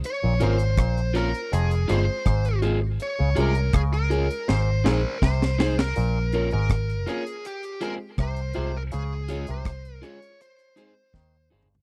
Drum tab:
HH |x-----x--x--x--x--x--x--x--x--x-----x--x--x-----|x-----x--x--x--x--x--x--------------------------|x-----x--x--x--x--x--x--x--x--x-----x--x--x-----|x-----x--x--x--x--x--x--x--x--x-----------------|
SD |------------r-----r-----------------r-----------|------------r-----------o-----o-----o--o--o--o--|------------r-----r-----------------r-----------|------------r-----------------------o-----------|
FT |------------------------------------------------|------------------------------------------------|------------------------------------------------|--------------------------------------------o-o-|
BD |------------o-----------------------o-----------|------------o-----------------------o-----------|------------o-----------------------o-----------|------------o-----------------------o-----------|